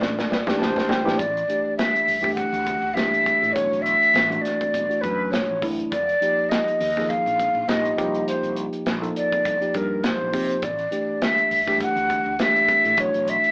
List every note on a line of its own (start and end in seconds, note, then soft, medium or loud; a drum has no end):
0.00 0.21 A1 medium
0.00 0.35 E3 medium
0.00 0.35 A3 medium
0.00 0.35 D4 medium
0.00 0.35 A4 medium
0.00 0.28 D5 medium
0.00 snare medium
0.00 high conga medium
0.19 snare medium
0.30 0.43 G1 medium
0.30 0.37 B4 medium
0.30 0.58 D5 medium
0.30 snare medium
0.46 0.99 E3 medium
0.46 0.99 A3 medium
0.46 1.00 D4 medium
0.46 1.00 G4 medium
0.46 muted fretless electric bass stroke soft
0.46 snare medium
0.46 high conga medium
0.46 low conga medium
0.58 0.75 D1 medium
0.58 1.19 C5 medium
0.58 0.87 A5 medium
0.58 snare medium
0.76 0.88 E1 medium
0.76 snare medium
0.76 high conga medium
0.89 1.04 G1 medium
0.89 1.17 G5 medium
0.89 snare medium
0.89 high conga medium
0.89 low conga medium
1.04 1.17 A1 medium
1.04 1.18 E3 medium
1.04 1.18 A3 medium
1.04 1.19 D4 medium
1.04 1.19 G4 loud
1.04 snare medium
1.18 1.41 A1 medium
1.18 1.76 D5 medium
1.18 kick medium
1.18 closed hi-hat medium
1.37 closed hi-hat soft
1.48 2.16 E3 medium
1.48 2.16 A3 soft
1.48 2.16 D4 medium
1.48 2.16 G4 medium
1.48 closed hi-hat medium
1.77 2.32 E5 medium
1.77 snare loud
1.77 closed hi-hat medium
1.96 closed hi-hat soft
2.08 2.42 G1 medium
2.08 open hi-hat medium
2.21 2.88 E3 medium
2.21 2.89 A3 medium
2.21 2.89 D4 medium
2.21 2.89 G4 medium
2.21 kick medium
2.35 2.96 F#5 medium
2.35 kick medium
2.35 closed hi-hat medium
2.53 2.75 D2 medium
2.53 closed hi-hat soft
2.67 kick medium
2.67 closed hi-hat medium
2.82 2.92 D2 medium
2.94 3.31 G1 medium
2.94 3.49 E3 medium
2.94 3.50 A3 medium
2.94 3.50 D4 medium
2.94 3.50 G4 medium
2.94 3.54 E5 medium
2.94 snare medium
2.94 closed hi-hat medium
3.14 closed hi-hat soft
3.26 kick medium
3.26 closed hi-hat soft
3.42 3.52 A2 medium
3.42 closed hi-hat soft
3.53 3.68 B1 medium
3.53 4.22 E3 medium
3.53 4.22 A3 medium
3.53 4.23 D4 medium
3.53 4.23 F#4 medium
3.53 3.83 C#5 medium
3.53 kick loud
3.53 closed hi-hat medium
3.71 3.94 B1 medium
3.71 closed hi-hat soft
3.82 4.43 E5 medium
3.82 closed hi-hat medium
4.03 closed hi-hat soft
4.14 4.36 A1 medium
4.14 snare loud
4.14 closed hi-hat medium
4.29 4.82 E3 medium
4.29 4.83 A3 medium
4.29 4.83 D4 medium
4.29 4.83 F#4 medium
4.29 closed hi-hat soft
4.41 5.03 D5 medium
4.41 closed hi-hat medium
4.46 snare soft
4.61 kick medium
4.61 closed hi-hat soft
4.74 4.86 B1 medium
4.74 kick medium
4.74 closed hi-hat medium
4.88 5.55 E3 medium
4.88 5.55 A3 medium
4.88 5.55 D4 medium
4.88 5.56 F#4 medium
4.88 closed hi-hat soft
5.01 5.33 F#2 medium
5.01 5.33 B4 medium
5.01 kick medium
5.01 closed hi-hat soft
5.31 5.45 B1 medium
5.31 5.64 C#5 medium
5.31 snare medium
5.31 closed hi-hat medium
5.49 5.59 A1 medium
5.61 5.84 F#1 medium
5.61 5.91 E3 medium
5.61 5.91 A3 medium
5.61 5.92 D4 medium
5.61 5.92 E4 medium
5.61 kick medium
5.61 open hi-hat medium
5.79 closed hi-hat soft
5.91 6.14 F1 medium
5.91 6.51 D5 medium
5.91 kick loud
5.91 closed hi-hat medium
6.09 closed hi-hat soft
6.21 6.88 F3 medium
6.21 6.89 A#3 medium
6.21 6.89 D#4 medium
6.21 6.89 G4 medium
6.21 closed hi-hat medium
6.49 7.11 D#5 medium
6.49 snare loud
6.49 closed hi-hat medium
6.68 closed hi-hat soft
6.80 7.15 D#2 medium
6.80 open hi-hat medium
6.97 7.62 F3 medium
6.97 7.63 A#3 medium
6.97 7.63 D#4 medium
6.97 7.63 G#4 medium
6.97 kick medium
6.97 snare soft
7.09 7.70 F5 medium
7.09 kick medium
7.09 closed hi-hat medium
7.26 7.48 A#1 medium
7.26 closed hi-hat soft
7.40 kick medium
7.40 closed hi-hat medium
7.55 7.65 A#1 medium
7.68 7.91 A#1 medium
7.68 7.96 F3 medium
7.68 7.96 A#3 medium
7.68 7.97 D#4 medium
7.68 7.97 G4 medium
7.68 8.27 D#5 medium
7.68 snare loud
7.68 closed hi-hat medium
7.85 closed hi-hat soft
7.97 8.33 C2 medium
7.97 8.91 F3 medium
7.97 8.91 A#3 medium
7.97 8.92 D#4 medium
7.97 8.92 G4 medium
7.97 kick medium
7.97 closed hi-hat medium
8.15 closed hi-hat soft
8.27 8.55 C5 medium
8.27 closed hi-hat medium
8.43 8.66 C2 medium
8.43 closed hi-hat soft
8.56 closed hi-hat medium
8.73 closed hi-hat soft
8.86 9.09 A#1 medium
8.86 snare medium
8.86 closed hi-hat medium
9.00 9.54 F3 medium
9.00 9.54 A#3 medium
9.00 9.55 D#4 medium
9.00 9.55 A4 medium
9.00 closed hi-hat soft
9.16 9.78 D5 medium
9.16 closed hi-hat medium
9.32 kick medium
9.32 closed hi-hat soft
9.45 9.58 C2 medium
9.45 kick medium
9.45 closed hi-hat medium
9.60 10.26 F3 medium
9.60 10.27 A#3 soft
9.60 10.27 D#4 medium
9.60 10.27 G4 medium
9.60 closed hi-hat soft
9.74 10.06 G2 medium
9.74 10.05 A#4 medium
9.74 kick medium
9.74 closed hi-hat medium
10.04 10.17 C2 medium
10.04 10.65 C5 medium
10.04 snare loud
10.04 closed hi-hat medium
10.21 10.31 A#1 medium
10.31 10.56 C3 medium
10.31 10.62 F3 medium
10.31 10.62 A#3 medium
10.31 10.62 D#4 medium
10.31 10.63 G4 medium
10.31 kick medium
10.31 open hi-hat medium
10.50 closed hi-hat soft
10.62 10.85 A1 medium
10.62 11.24 D5 medium
10.62 kick loud
10.62 closed hi-hat medium
10.79 closed hi-hat soft
10.91 11.59 E3 medium
10.91 11.59 A3 medium
10.91 11.59 D4 medium
10.91 11.59 G4 medium
10.91 closed hi-hat medium
11.22 11.81 E5 medium
11.22 snare loud
11.22 closed hi-hat medium
11.38 closed hi-hat soft
11.51 11.86 G1 medium
11.51 open hi-hat medium
11.66 12.32 E3 medium
11.66 12.32 A3 medium
11.66 12.33 D4 medium
11.66 12.33 G4 medium
11.66 kick medium
11.66 snare soft
11.80 12.43 F#5 medium
11.80 kick medium
11.80 closed hi-hat medium
11.96 12.18 D2 medium
11.96 closed hi-hat soft
12.10 kick medium
12.10 closed hi-hat medium
12.26 12.36 D2 medium
12.39 12.73 G1 medium
12.39 12.93 E3 medium
12.39 12.93 A3 medium
12.39 12.93 D4 medium
12.39 12.93 G4 medium
12.39 13.02 E5 medium
12.39 snare medium
12.39 closed hi-hat medium
12.56 closed hi-hat soft
12.68 kick medium
12.68 closed hi-hat medium
12.84 12.94 A2 medium
12.84 closed hi-hat soft
12.97 13.10 B1 medium
12.97 13.51 E3 medium
12.97 13.51 A3 medium
12.97 13.51 D4 medium
12.97 13.51 F#4 medium
12.97 13.31 C#5 medium
12.97 kick loud
12.97 closed hi-hat medium
13.14 13.36 B1 medium
13.14 closed hi-hat soft
13.28 13.51 E5 loud
13.28 closed hi-hat medium
13.44 closed hi-hat soft